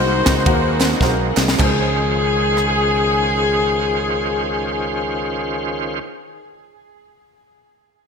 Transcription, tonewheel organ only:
0.00 1.55 D#3 medium
0.00 1.55 G#3 medium
0.00 1.56 A#3 medium
0.00 1.56 C4 medium
0.00 1.56 F#4 medium
1.60 5.99 D#3 medium
1.60 6.00 C#4 medium
1.60 5.99 F4 medium
1.60 5.99 C5 medium

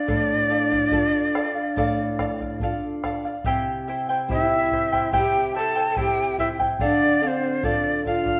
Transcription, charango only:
0.08 0.48 A4 medium
0.08 0.49 D5 medium
0.08 0.49 F5 medium
0.49 0.71 A4 medium
0.49 0.71 D5 medium
0.49 0.70 F5 medium
0.71 0.91 D5 soft
0.71 0.92 F5 medium
0.92 1.34 A4 medium
0.92 1.34 D5 medium
0.92 1.35 F5 medium
1.35 1.56 A4 medium
1.35 1.56 D5 medium
1.35 1.54 F5 medium
1.55 1.77 D5 soft
1.55 1.76 F5 medium
1.77 2.18 A4 medium
1.77 2.19 D5 medium
1.77 2.19 F5 medium
2.19 2.40 A4 medium
2.19 2.40 D5 medium
2.19 2.39 F5 medium
2.41 2.62 D5 soft
2.41 2.61 F5 soft
2.62 3.02 A4 medium
2.62 3.03 D5 medium
2.62 3.04 F5 medium
3.04 3.24 A4 medium
3.04 3.25 D5 medium
3.04 3.24 F5 medium
3.25 3.45 D5 soft
3.25 3.45 F5 medium
3.46 3.88 E4 medium
3.46 3.87 G4 medium
3.46 3.88 C5 medium
3.46 3.87 E5 medium
3.46 3.88 G5 medium
3.88 4.09 E4 medium
3.88 4.09 C5 medium
3.88 4.08 E5 medium
3.88 4.08 G5 medium
4.09 4.30 E4 soft
4.09 4.30 C5 soft
4.09 4.29 G5 medium
4.31 4.71 E4 medium
4.31 4.72 C5 medium
4.31 4.71 E5 medium
4.31 4.72 G5 medium
4.72 4.92 E4 medium
4.72 4.92 C5 medium
4.72 4.92 E5 medium
4.72 4.91 G5 medium
4.92 5.12 E4 soft
4.92 5.12 C5 soft
4.92 5.12 G5 medium
5.13 5.54 E4 medium
5.13 5.54 G4 medium
5.13 5.55 C5 medium
5.13 5.53 E5 medium
5.13 5.55 G5 medium
5.55 5.76 E4 medium
5.55 5.75 C5 medium
5.55 5.75 E5 medium
5.55 5.74 G5 medium
5.76 5.96 E4 soft
5.76 5.97 C5 soft
5.76 5.96 G5 soft
5.97 6.38 E4 medium
5.97 6.39 C5 medium
5.97 6.37 E5 medium
5.97 6.39 G5 medium
6.39 6.59 E4 medium
6.39 6.59 C5 medium
6.39 6.59 E5 medium
6.39 6.58 G5 medium
6.60 6.80 E4 soft
6.60 6.80 C5 soft
6.60 6.80 G5 medium
6.80 7.20 A4 medium
6.80 7.21 D5 medium
6.80 7.21 F5 medium
7.21 7.42 A4 medium
7.21 7.43 D5 medium
7.21 7.42 F5 medium
7.43 7.63 D5 soft
7.43 7.64 F5 medium
7.63 8.05 A4 medium
7.63 8.06 D5 medium
7.63 8.06 F5 medium
8.06 8.26 A4 medium
8.06 8.26 D5 medium
8.06 8.24 F5 medium
8.26 8.40 D5 soft
8.26 8.40 F5 medium

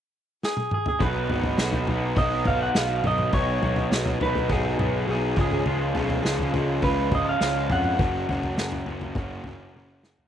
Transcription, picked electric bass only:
1.00 1.26 B1 medium
1.31 1.56 G#1 medium
1.58 1.84 B1 medium
1.88 2.14 B1 medium
2.17 2.68 B1 medium
2.76 3.01 B1 medium
3.04 3.30 B1 medium
3.33 3.59 B1 medium
3.62 3.88 B1 medium
3.91 4.17 B1 medium
4.21 4.47 B1 medium
4.50 4.75 B1 medium
4.79 5.05 B1 medium
5.08 5.34 B1 medium
5.37 5.63 C#2 medium
5.66 5.92 C#2 medium
5.95 6.21 B1 medium
6.24 6.50 C#2 medium
6.54 6.79 C#2 medium
6.82 7.34 C#2 medium
7.41 7.67 C#2 medium
7.71 7.96 F2 medium
7.99 8.25 F#1 medium
8.29 8.55 F#1 medium
8.57 8.83 F#1 medium
8.87 9.13 F#1 medium
9.16 9.42 F#1 medium
9.46 9.72 F#1 medium
9.74 10.26 F#1 medium

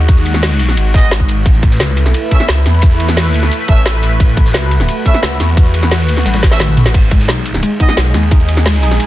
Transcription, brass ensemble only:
0.94 1.07 B3 medium
0.94 1.07 G#4 medium
0.94 1.07 D#5 loud
2.31 2.45 C#4 medium
2.31 2.45 A4 medium
2.31 2.45 E5 loud
3.69 3.82 C#4 medium
3.69 3.82 A4 medium
3.69 3.82 E5 loud
5.06 5.19 C#4 medium
5.06 5.19 A4 medium
5.06 5.19 E5 loud
6.51 6.60 C#4 loud
6.51 6.60 A4 medium
6.51 6.60 E5 loud
7.80 7.93 B3 medium
7.80 7.93 G#4 medium
7.80 7.93 D#5 loud

